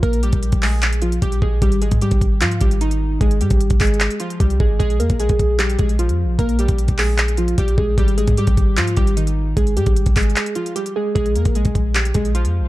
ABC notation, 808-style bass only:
X:1
M:4/4
L:1/16
Q:1/4=151
K:Ab
V:1 name="808-style bass" clef=bass
B,,,3 B,,,2 B,,,6- B,,, B,,,2 B,,,2 | A,,,3 A,,2 A,,,3 A,,2 A,,,6 | A,,,2 A,, A,,,2 A,,,4 z3 C,,2 A,,,2 | B,,,2 F,, B,,,2 B,,,4- B,,, B,,,3 F,,3/2 B,,,3/2 |
B,,,3 B,,,2 B,,,6- B,,, B,,,2 B,,,2 | A,,,3 A,,2 A,,,3 A,,2 A,,,6 | A,,,2 A,, A,,,2 A,,,3 z8 | B,,,2 F,, B,,,2 B,,,4- B,,, B,,,3 F,,3/2 B,,,3/2 |]